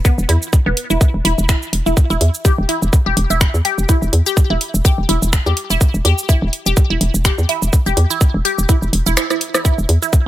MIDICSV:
0, 0, Header, 1, 4, 480
1, 0, Start_track
1, 0, Key_signature, 1, "minor"
1, 0, Tempo, 480000
1, 49, Time_signature, 4, 2, 24, 8
1, 10276, End_track
2, 0, Start_track
2, 0, Title_t, "Synth arpeggio sound"
2, 0, Program_c, 0, 84
2, 48, Note_on_c, 0, 59, 85
2, 119, Note_off_c, 0, 59, 0
2, 289, Note_on_c, 0, 64, 75
2, 336, Note_off_c, 0, 64, 0
2, 662, Note_on_c, 0, 59, 73
2, 719, Note_off_c, 0, 59, 0
2, 903, Note_on_c, 0, 64, 78
2, 940, Note_off_c, 0, 64, 0
2, 1249, Note_on_c, 0, 64, 82
2, 1296, Note_off_c, 0, 64, 0
2, 1489, Note_on_c, 0, 64, 83
2, 1560, Note_off_c, 0, 64, 0
2, 1863, Note_on_c, 0, 64, 77
2, 1885, Note_off_c, 0, 64, 0
2, 2102, Note_on_c, 0, 64, 83
2, 2140, Note_off_c, 0, 64, 0
2, 2448, Note_on_c, 0, 67, 84
2, 2477, Note_off_c, 0, 67, 0
2, 2688, Note_on_c, 0, 64, 74
2, 2736, Note_off_c, 0, 64, 0
2, 3062, Note_on_c, 0, 67, 74
2, 3085, Note_off_c, 0, 67, 0
2, 3302, Note_on_c, 0, 64, 75
2, 3340, Note_off_c, 0, 64, 0
2, 3649, Note_on_c, 0, 67, 74
2, 3677, Note_off_c, 0, 67, 0
2, 3888, Note_on_c, 0, 64, 83
2, 3936, Note_off_c, 0, 64, 0
2, 4263, Note_on_c, 0, 67, 81
2, 4286, Note_off_c, 0, 67, 0
2, 4502, Note_on_c, 0, 64, 74
2, 4540, Note_off_c, 0, 64, 0
2, 4849, Note_on_c, 0, 67, 84
2, 4878, Note_off_c, 0, 67, 0
2, 5089, Note_on_c, 0, 64, 80
2, 5136, Note_off_c, 0, 64, 0
2, 5464, Note_on_c, 0, 67, 76
2, 5486, Note_off_c, 0, 67, 0
2, 5704, Note_on_c, 0, 64, 78
2, 5741, Note_off_c, 0, 64, 0
2, 6049, Note_on_c, 0, 67, 78
2, 6078, Note_off_c, 0, 67, 0
2, 6289, Note_on_c, 0, 64, 89
2, 6336, Note_off_c, 0, 64, 0
2, 6663, Note_on_c, 0, 67, 76
2, 6686, Note_off_c, 0, 67, 0
2, 6904, Note_on_c, 0, 64, 75
2, 6941, Note_off_c, 0, 64, 0
2, 7249, Note_on_c, 0, 67, 87
2, 7278, Note_off_c, 0, 67, 0
2, 7490, Note_on_c, 0, 64, 81
2, 7537, Note_off_c, 0, 64, 0
2, 7863, Note_on_c, 0, 67, 79
2, 7885, Note_off_c, 0, 67, 0
2, 8103, Note_on_c, 0, 64, 78
2, 8141, Note_off_c, 0, 64, 0
2, 8449, Note_on_c, 0, 67, 78
2, 8477, Note_off_c, 0, 67, 0
2, 8689, Note_on_c, 0, 64, 84
2, 8736, Note_off_c, 0, 64, 0
2, 9064, Note_on_c, 0, 64, 75
2, 9101, Note_off_c, 0, 64, 0
2, 9168, Note_on_c, 0, 64, 84
2, 9197, Note_off_c, 0, 64, 0
2, 9304, Note_on_c, 0, 64, 73
2, 9341, Note_off_c, 0, 64, 0
2, 9544, Note_on_c, 0, 64, 78
2, 9566, Note_off_c, 0, 64, 0
2, 9650, Note_on_c, 0, 64, 82
2, 9696, Note_off_c, 0, 64, 0
2, 10024, Note_on_c, 0, 64, 77
2, 10079, Note_off_c, 0, 64, 0
2, 10276, End_track
3, 0, Start_track
3, 0, Title_t, "FM bass"
3, 0, Program_c, 1, 39
3, 182, Note_on_c, 1, 28, 97
3, 256, Note_off_c, 1, 28, 0
3, 288, Note_on_c, 1, 40, 98
3, 382, Note_off_c, 1, 40, 0
3, 663, Note_on_c, 1, 28, 108
3, 736, Note_off_c, 1, 28, 0
3, 903, Note_on_c, 1, 28, 91
3, 976, Note_off_c, 1, 28, 0
3, 1142, Note_on_c, 1, 28, 85
3, 1216, Note_off_c, 1, 28, 0
3, 1248, Note_on_c, 1, 28, 98
3, 1341, Note_off_c, 1, 28, 0
3, 1384, Note_on_c, 1, 28, 91
3, 1541, Note_off_c, 1, 28, 0
3, 1729, Note_on_c, 1, 28, 82
3, 1822, Note_off_c, 1, 28, 0
3, 1864, Note_on_c, 1, 28, 85
3, 1937, Note_off_c, 1, 28, 0
3, 2103, Note_on_c, 1, 28, 97
3, 2177, Note_off_c, 1, 28, 0
3, 2210, Note_on_c, 1, 40, 95
3, 2302, Note_off_c, 1, 40, 0
3, 2584, Note_on_c, 1, 28, 105
3, 2657, Note_off_c, 1, 28, 0
3, 2824, Note_on_c, 1, 28, 94
3, 2897, Note_off_c, 1, 28, 0
3, 3063, Note_on_c, 1, 28, 84
3, 3136, Note_off_c, 1, 28, 0
3, 3169, Note_on_c, 1, 28, 101
3, 3262, Note_off_c, 1, 28, 0
3, 3303, Note_on_c, 1, 28, 85
3, 3460, Note_off_c, 1, 28, 0
3, 3542, Note_on_c, 1, 40, 92
3, 3616, Note_off_c, 1, 40, 0
3, 3782, Note_on_c, 1, 28, 83
3, 3856, Note_off_c, 1, 28, 0
3, 4022, Note_on_c, 1, 28, 94
3, 4096, Note_off_c, 1, 28, 0
3, 4129, Note_on_c, 1, 40, 92
3, 4222, Note_off_c, 1, 40, 0
3, 4503, Note_on_c, 1, 28, 101
3, 4576, Note_off_c, 1, 28, 0
3, 4742, Note_on_c, 1, 28, 91
3, 4816, Note_off_c, 1, 28, 0
3, 4982, Note_on_c, 1, 28, 88
3, 5056, Note_off_c, 1, 28, 0
3, 5089, Note_on_c, 1, 28, 101
3, 5182, Note_off_c, 1, 28, 0
3, 5224, Note_on_c, 1, 28, 92
3, 5381, Note_off_c, 1, 28, 0
3, 5463, Note_on_c, 1, 40, 95
3, 5536, Note_off_c, 1, 40, 0
3, 5703, Note_on_c, 1, 28, 84
3, 5776, Note_off_c, 1, 28, 0
3, 5942, Note_on_c, 1, 28, 96
3, 6016, Note_off_c, 1, 28, 0
3, 6048, Note_on_c, 1, 40, 98
3, 6142, Note_off_c, 1, 40, 0
3, 6423, Note_on_c, 1, 28, 103
3, 6496, Note_off_c, 1, 28, 0
3, 6662, Note_on_c, 1, 28, 88
3, 6736, Note_off_c, 1, 28, 0
3, 6903, Note_on_c, 1, 28, 86
3, 6976, Note_off_c, 1, 28, 0
3, 7010, Note_on_c, 1, 28, 101
3, 7102, Note_off_c, 1, 28, 0
3, 7143, Note_on_c, 1, 28, 90
3, 7300, Note_off_c, 1, 28, 0
3, 7384, Note_on_c, 1, 40, 91
3, 7457, Note_off_c, 1, 40, 0
3, 7623, Note_on_c, 1, 28, 85
3, 7696, Note_off_c, 1, 28, 0
3, 7864, Note_on_c, 1, 28, 95
3, 7937, Note_off_c, 1, 28, 0
3, 7970, Note_on_c, 1, 40, 97
3, 8062, Note_off_c, 1, 40, 0
3, 8344, Note_on_c, 1, 28, 105
3, 8417, Note_off_c, 1, 28, 0
3, 8584, Note_on_c, 1, 28, 86
3, 8657, Note_off_c, 1, 28, 0
3, 8823, Note_on_c, 1, 28, 88
3, 8896, Note_off_c, 1, 28, 0
3, 8930, Note_on_c, 1, 28, 98
3, 9022, Note_off_c, 1, 28, 0
3, 9064, Note_on_c, 1, 28, 92
3, 9170, Note_off_c, 1, 28, 0
3, 9784, Note_on_c, 1, 28, 92
3, 9857, Note_off_c, 1, 28, 0
3, 9890, Note_on_c, 1, 40, 98
3, 9982, Note_off_c, 1, 40, 0
3, 10276, End_track
4, 0, Start_track
4, 0, Title_t, "Drums"
4, 49, Note_on_c, 9, 36, 125
4, 50, Note_on_c, 9, 82, 52
4, 149, Note_off_c, 9, 36, 0
4, 150, Note_off_c, 9, 82, 0
4, 185, Note_on_c, 9, 82, 26
4, 285, Note_off_c, 9, 82, 0
4, 290, Note_on_c, 9, 46, 96
4, 390, Note_off_c, 9, 46, 0
4, 424, Note_on_c, 9, 82, 39
4, 524, Note_off_c, 9, 82, 0
4, 529, Note_on_c, 9, 36, 127
4, 531, Note_on_c, 9, 82, 51
4, 629, Note_off_c, 9, 36, 0
4, 631, Note_off_c, 9, 82, 0
4, 770, Note_on_c, 9, 46, 94
4, 870, Note_off_c, 9, 46, 0
4, 904, Note_on_c, 9, 82, 42
4, 1004, Note_off_c, 9, 82, 0
4, 1009, Note_on_c, 9, 36, 125
4, 1011, Note_on_c, 9, 82, 48
4, 1109, Note_off_c, 9, 36, 0
4, 1111, Note_off_c, 9, 82, 0
4, 1250, Note_on_c, 9, 46, 89
4, 1350, Note_off_c, 9, 46, 0
4, 1384, Note_on_c, 9, 82, 41
4, 1484, Note_off_c, 9, 82, 0
4, 1489, Note_on_c, 9, 36, 122
4, 1490, Note_on_c, 9, 26, 104
4, 1490, Note_on_c, 9, 82, 50
4, 1589, Note_off_c, 9, 36, 0
4, 1590, Note_off_c, 9, 26, 0
4, 1590, Note_off_c, 9, 82, 0
4, 1624, Note_on_c, 9, 82, 26
4, 1724, Note_off_c, 9, 82, 0
4, 1730, Note_on_c, 9, 46, 102
4, 1830, Note_off_c, 9, 46, 0
4, 1864, Note_on_c, 9, 82, 38
4, 1964, Note_off_c, 9, 82, 0
4, 1969, Note_on_c, 9, 36, 118
4, 1970, Note_on_c, 9, 82, 51
4, 2069, Note_off_c, 9, 36, 0
4, 2070, Note_off_c, 9, 82, 0
4, 2104, Note_on_c, 9, 82, 27
4, 2204, Note_off_c, 9, 82, 0
4, 2209, Note_on_c, 9, 46, 92
4, 2309, Note_off_c, 9, 46, 0
4, 2344, Note_on_c, 9, 82, 39
4, 2444, Note_off_c, 9, 82, 0
4, 2449, Note_on_c, 9, 36, 122
4, 2449, Note_on_c, 9, 82, 51
4, 2549, Note_off_c, 9, 36, 0
4, 2549, Note_off_c, 9, 82, 0
4, 2689, Note_on_c, 9, 46, 90
4, 2789, Note_off_c, 9, 46, 0
4, 2825, Note_on_c, 9, 82, 40
4, 2925, Note_off_c, 9, 82, 0
4, 2929, Note_on_c, 9, 36, 122
4, 2930, Note_on_c, 9, 82, 50
4, 3029, Note_off_c, 9, 36, 0
4, 3030, Note_off_c, 9, 82, 0
4, 3169, Note_on_c, 9, 46, 87
4, 3269, Note_off_c, 9, 46, 0
4, 3304, Note_on_c, 9, 82, 43
4, 3404, Note_off_c, 9, 82, 0
4, 3409, Note_on_c, 9, 36, 125
4, 3411, Note_on_c, 9, 26, 106
4, 3411, Note_on_c, 9, 82, 53
4, 3509, Note_off_c, 9, 36, 0
4, 3511, Note_off_c, 9, 26, 0
4, 3511, Note_off_c, 9, 82, 0
4, 3544, Note_on_c, 9, 82, 28
4, 3644, Note_off_c, 9, 82, 0
4, 3650, Note_on_c, 9, 46, 98
4, 3750, Note_off_c, 9, 46, 0
4, 3784, Note_on_c, 9, 82, 41
4, 3884, Note_off_c, 9, 82, 0
4, 3889, Note_on_c, 9, 36, 106
4, 3890, Note_on_c, 9, 82, 52
4, 3989, Note_off_c, 9, 36, 0
4, 3990, Note_off_c, 9, 82, 0
4, 4024, Note_on_c, 9, 82, 29
4, 4124, Note_off_c, 9, 82, 0
4, 4130, Note_on_c, 9, 46, 92
4, 4230, Note_off_c, 9, 46, 0
4, 4264, Note_on_c, 9, 82, 40
4, 4364, Note_off_c, 9, 82, 0
4, 4369, Note_on_c, 9, 36, 113
4, 4370, Note_on_c, 9, 82, 55
4, 4469, Note_off_c, 9, 36, 0
4, 4470, Note_off_c, 9, 82, 0
4, 4610, Note_on_c, 9, 46, 88
4, 4710, Note_off_c, 9, 46, 0
4, 4744, Note_on_c, 9, 82, 43
4, 4844, Note_off_c, 9, 82, 0
4, 4849, Note_on_c, 9, 36, 113
4, 4850, Note_on_c, 9, 82, 53
4, 4949, Note_off_c, 9, 36, 0
4, 4950, Note_off_c, 9, 82, 0
4, 5090, Note_on_c, 9, 46, 87
4, 5190, Note_off_c, 9, 46, 0
4, 5224, Note_on_c, 9, 82, 44
4, 5324, Note_off_c, 9, 82, 0
4, 5329, Note_on_c, 9, 26, 103
4, 5329, Note_on_c, 9, 36, 114
4, 5329, Note_on_c, 9, 82, 52
4, 5429, Note_off_c, 9, 26, 0
4, 5429, Note_off_c, 9, 36, 0
4, 5429, Note_off_c, 9, 82, 0
4, 5464, Note_on_c, 9, 82, 27
4, 5564, Note_off_c, 9, 82, 0
4, 5568, Note_on_c, 9, 46, 90
4, 5668, Note_off_c, 9, 46, 0
4, 5703, Note_on_c, 9, 82, 43
4, 5803, Note_off_c, 9, 82, 0
4, 5809, Note_on_c, 9, 36, 110
4, 5810, Note_on_c, 9, 82, 56
4, 5909, Note_off_c, 9, 36, 0
4, 5909, Note_off_c, 9, 82, 0
4, 5944, Note_on_c, 9, 82, 28
4, 6044, Note_off_c, 9, 82, 0
4, 6050, Note_on_c, 9, 46, 89
4, 6150, Note_off_c, 9, 46, 0
4, 6183, Note_on_c, 9, 82, 43
4, 6283, Note_off_c, 9, 82, 0
4, 6289, Note_on_c, 9, 36, 108
4, 6290, Note_on_c, 9, 82, 55
4, 6389, Note_off_c, 9, 36, 0
4, 6390, Note_off_c, 9, 82, 0
4, 6530, Note_on_c, 9, 46, 85
4, 6629, Note_off_c, 9, 46, 0
4, 6663, Note_on_c, 9, 82, 45
4, 6763, Note_off_c, 9, 82, 0
4, 6769, Note_on_c, 9, 36, 117
4, 6769, Note_on_c, 9, 82, 55
4, 6869, Note_off_c, 9, 36, 0
4, 6869, Note_off_c, 9, 82, 0
4, 7010, Note_on_c, 9, 46, 87
4, 7110, Note_off_c, 9, 46, 0
4, 7144, Note_on_c, 9, 82, 46
4, 7244, Note_off_c, 9, 82, 0
4, 7249, Note_on_c, 9, 36, 114
4, 7250, Note_on_c, 9, 26, 102
4, 7250, Note_on_c, 9, 82, 58
4, 7349, Note_off_c, 9, 36, 0
4, 7350, Note_off_c, 9, 26, 0
4, 7350, Note_off_c, 9, 82, 0
4, 7384, Note_on_c, 9, 82, 30
4, 7484, Note_off_c, 9, 82, 0
4, 7490, Note_on_c, 9, 46, 89
4, 7590, Note_off_c, 9, 46, 0
4, 7624, Note_on_c, 9, 82, 45
4, 7724, Note_off_c, 9, 82, 0
4, 7729, Note_on_c, 9, 36, 110
4, 7730, Note_on_c, 9, 82, 56
4, 7829, Note_off_c, 9, 36, 0
4, 7830, Note_off_c, 9, 82, 0
4, 7864, Note_on_c, 9, 82, 28
4, 7964, Note_off_c, 9, 82, 0
4, 7970, Note_on_c, 9, 46, 90
4, 8070, Note_off_c, 9, 46, 0
4, 8105, Note_on_c, 9, 82, 43
4, 8205, Note_off_c, 9, 82, 0
4, 8210, Note_on_c, 9, 36, 112
4, 8210, Note_on_c, 9, 82, 56
4, 8310, Note_off_c, 9, 36, 0
4, 8310, Note_off_c, 9, 82, 0
4, 8451, Note_on_c, 9, 46, 88
4, 8551, Note_off_c, 9, 46, 0
4, 8586, Note_on_c, 9, 82, 46
4, 8686, Note_off_c, 9, 82, 0
4, 8690, Note_on_c, 9, 36, 116
4, 8692, Note_on_c, 9, 82, 56
4, 8790, Note_off_c, 9, 36, 0
4, 8792, Note_off_c, 9, 82, 0
4, 8826, Note_on_c, 9, 82, 29
4, 8926, Note_off_c, 9, 82, 0
4, 8932, Note_on_c, 9, 46, 87
4, 9032, Note_off_c, 9, 46, 0
4, 9066, Note_on_c, 9, 82, 45
4, 9166, Note_off_c, 9, 82, 0
4, 9171, Note_on_c, 9, 26, 106
4, 9171, Note_on_c, 9, 37, 64
4, 9171, Note_on_c, 9, 82, 58
4, 9271, Note_off_c, 9, 26, 0
4, 9271, Note_off_c, 9, 37, 0
4, 9271, Note_off_c, 9, 82, 0
4, 9305, Note_on_c, 9, 37, 60
4, 9305, Note_on_c, 9, 82, 30
4, 9405, Note_off_c, 9, 37, 0
4, 9405, Note_off_c, 9, 82, 0
4, 9411, Note_on_c, 9, 46, 94
4, 9511, Note_off_c, 9, 46, 0
4, 9545, Note_on_c, 9, 37, 85
4, 9545, Note_on_c, 9, 82, 45
4, 9645, Note_off_c, 9, 37, 0
4, 9645, Note_off_c, 9, 82, 0
4, 9649, Note_on_c, 9, 36, 117
4, 9651, Note_on_c, 9, 82, 58
4, 9749, Note_off_c, 9, 36, 0
4, 9751, Note_off_c, 9, 82, 0
4, 9785, Note_on_c, 9, 82, 30
4, 9885, Note_off_c, 9, 82, 0
4, 9890, Note_on_c, 9, 46, 90
4, 9990, Note_off_c, 9, 46, 0
4, 10025, Note_on_c, 9, 82, 46
4, 10125, Note_off_c, 9, 82, 0
4, 10129, Note_on_c, 9, 36, 119
4, 10131, Note_on_c, 9, 82, 57
4, 10229, Note_off_c, 9, 36, 0
4, 10231, Note_off_c, 9, 82, 0
4, 10276, End_track
0, 0, End_of_file